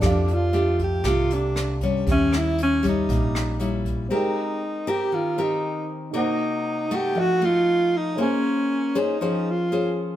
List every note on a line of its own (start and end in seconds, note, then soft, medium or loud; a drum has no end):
0.00 1.01 F2 medium
0.00 1.02 F3 soft
0.00 0.49 A3 soft
0.00 2.01 D4 medium
0.00 0.49 D4 soft
0.00 2.02 G4 soft
0.00 0.49 G4 soft
0.00 2.03 A4 soft
0.00 kick medium
0.00 cross-stick medium
0.00 closed hi-hat medium
0.06 0.35 D4 medium
0.06 2.04 F5 medium
0.28 closed hi-hat soft
0.34 0.82 F4 medium
0.53 1.00 A3 medium
0.53 1.01 D4 soft
0.53 1.01 G4 medium
0.53 closed hi-hat soft
0.79 kick soft
0.79 closed hi-hat soft
0.83 1.09 G4 medium
1.04 2.03 C2 loud
1.04 2.04 C3 soft
1.04 1.77 A3 medium
1.04 1.77 D4 medium
1.04 1.77 G4 medium
1.04 kick medium
1.04 cross-stick medium
1.04 closed hi-hat medium
1.08 1.34 F4 medium
1.31 1.83 D4 medium
1.31 closed hi-hat soft
1.56 cross-stick medium
1.56 closed hi-hat soft
1.81 2.80 G3 medium
1.81 2.80 C#4 medium
1.81 kick soft
1.81 closed hi-hat soft
2.06 3.05 D#2 medium
2.06 3.07 D#3 soft
2.06 4.07 G4 soft
2.06 4.08 C#5 soft
2.06 kick medium
2.06 closed hi-hat medium
2.11 2.38 C#4 medium
2.11 4.09 E5 medium
2.33 cross-stick medium
2.33 closed hi-hat soft
2.37 2.60 E4 medium
2.58 closed hi-hat soft
2.63 2.84 C#4 medium
2.83 3.56 G3 medium
2.83 3.56 C#4 medium
2.83 kick soft
2.83 closed hi-hat soft
2.89 3.84 D#4 medium
3.09 4.07 A#1 medium
3.09 4.09 A#2 medium
3.09 kick medium
3.09 closed hi-hat medium
3.35 cross-stick medium
3.35 closed hi-hat soft
3.60 4.09 G3 soft
3.60 4.09 C#4 soft
3.60 4.09 E4 medium
3.60 closed hi-hat soft
3.85 kick soft
3.85 closed hi-hat soft
4.09 5.10 G#3 medium
4.09 6.10 C4 soft
4.09 4.62 C4 medium
4.09 4.62 G4 medium
4.09 4.62 A#4 medium
4.13 4.92 D#4 medium
4.13 6.12 A#4 soft
4.13 6.13 G5 medium
4.87 5.34 C4 medium
4.87 5.34 G4 medium
4.87 5.16 G4 medium
4.87 5.35 A#4 medium
5.12 6.12 D#3 medium
5.12 5.43 F4 medium
5.38 6.11 C4 medium
5.38 6.11 G4 medium
5.38 6.11 A#4 medium
5.42 5.91 D#4 medium
6.11 7.14 C3 medium
6.11 6.87 A#3 medium
6.11 7.13 D#4 soft
6.11 6.87 D#4 medium
6.11 6.87 F#4 medium
6.11 7.14 A#4 soft
6.15 6.97 D#4 medium
6.15 7.15 C5 soft
6.15 7.16 F#5 medium
6.91 7.38 A3 medium
6.91 7.38 D#4 medium
6.91 7.38 F#4 medium
6.95 7.21 G4 medium
7.15 8.15 F3 medium
7.15 8.16 A4 soft
7.15 8.17 D#5 soft
7.19 7.46 F#4 loud
7.19 8.18 F#5 soft
7.42 8.14 A3 medium
7.42 8.15 D#4 medium
7.42 7.98 F4 loud
7.97 8.21 D#4 medium
8.15 9.18 A#3 medium
8.15 10.16 C#4 soft
8.15 8.91 C#4 soft
8.15 8.91 G#4 medium
8.15 10.16 A#4 soft
8.15 8.91 C5 medium
8.15 10.16 C5 soft
8.21 9.00 C#4 medium
8.21 10.16 G#5 medium
8.95 9.17 C#4 medium
8.95 9.52 D#4 medium
8.95 9.17 G#4 medium
8.95 9.17 C5 medium
9.21 10.16 F3 medium
9.21 9.68 C#4 medium
9.21 9.68 G#4 medium
9.21 9.68 C5 medium
9.51 10.00 F4 medium
9.72 10.16 C#4 medium
9.72 10.16 G#4 medium
9.72 10.16 C5 medium